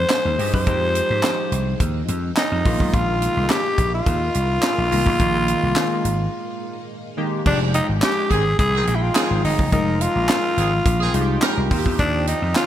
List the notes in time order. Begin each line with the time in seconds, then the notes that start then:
Already playing: F3 G#3 D#4 C5 G5
0.10 snare, clap, closed hi-hat
0.25 D#2
0.38 G2 F3 G#3 D#4 G4, open hi-hat
0.54 F#2 C5, kick
0.66 F2 F3 G#3 D#4 G4, kick, closed hi-hat
0.95 closed hi-hat
1.10 G#2
1.23 snare, clap, closed hi-hat
1.52 C2, closed hi-hat
1.80 D#2, kick, closed hi-hat
2.08 F2, closed hi-hat
2.37 D#4, snare, clap, closed hi-hat
2.52 F2
2.65 A#1 D#3 G#3 A#3 F4, kick, open hi-hat
2.80 B1, kick
2.94 A#1 F4, kick, closed hi-hat
3.22 closed hi-hat
3.37 C2
3.50 G4, snare, clap, closed hi-hat
3.78 A#1, kick, closed hi-hat
3.94 F4
4.06 D#2, kick, closed hi-hat
4.35 C2, closed hi-hat
4.63 snare, clap, closed hi-hat
4.78 A#1
4.91 C2 D#3 G#3 A#3 F4, open hi-hat
5.06 B1, kick
5.19 A#1 D#3 G#3 A#3 F4, kick, closed hi-hat
5.48 closed hi-hat
5.63 C2
5.76 snare, clap, closed hi-hat
6.05 G#1, closed hi-hat
7.17 D#3 G#3 A#3 G4
7.46 F1 F3 G#3 D4 D#4 G4 G5, kick, crash
7.74 D#4, closed hi-hat
7.89 G#1
8.02 G4, snare, clap, closed hi-hat
8.30 G#1 D#3 C4 G#4, kick, closed hi-hat
8.59 C2 G#4, kick, closed hi-hat
8.74 D#3 C4 G#4
8.87 A#1 F3 G#3 D#4 G5, closed hi-hat
8.95 E4
9.03 F4
9.15 D#3 C4 G#4, snare, clap, closed hi-hat
9.31 G#1
9.44 G1 D#4, open hi-hat
9.59 F#1, kick
9.72 F1 F3 G#3 D#4 F4 A#4, kick, closed hi-hat
10.01 F4, closed hi-hat
10.16 A#1
10.29 snare, clap, closed hi-hat
10.57 G#1 D#3 C4 G#4, closed hi-hat
10.86 A#1, kick, closed hi-hat
11.01 D#3 C4 G#4
11.14 C2 F3 G#3 D#4 F4, closed hi-hat
11.21 G4
11.42 G3 F4 A#4, snare, clap, closed hi-hat
11.57 C2
11.71 D#2 D#3 F3 C4 D#4 F4 G5, kick, open hi-hat
11.78 G4
11.86 E2, kick
11.99 D#2 D4, kick, closed hi-hat
12.27 D#4, closed hi-hat
12.42 F2
12.56 F4, snare, clap, closed hi-hat